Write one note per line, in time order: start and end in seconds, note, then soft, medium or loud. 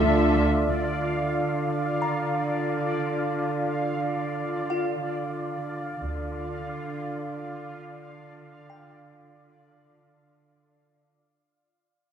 0.00 0.45 D2 medium
0.00 0.45 D3 soft
0.00 0.22 D3 soft
0.00 0.45 F4 medium
0.00 0.64 F4 soft
0.00 0.45 A4 medium
0.00 0.64 D5 soft
0.00 0.45 E5 medium
0.00 0.64 E5 soft
0.36 0.56 D3 soft
0.68 1.31 D2 soft
0.68 5.98 D3 soft
0.68 5.98 F4 soft
0.68 5.98 D5 soft
0.68 5.98 F5 soft
2.02 3.98 A#5 soft
4.70 6.65 F4 soft
4.70 6.65 F5 soft
6.01 6.65 D2 soft
6.01 11.11 D3 soft
6.01 11.31 F4 soft
6.01 11.31 D5 soft
6.01 11.31 F5 soft
8.70 10.65 G5 soft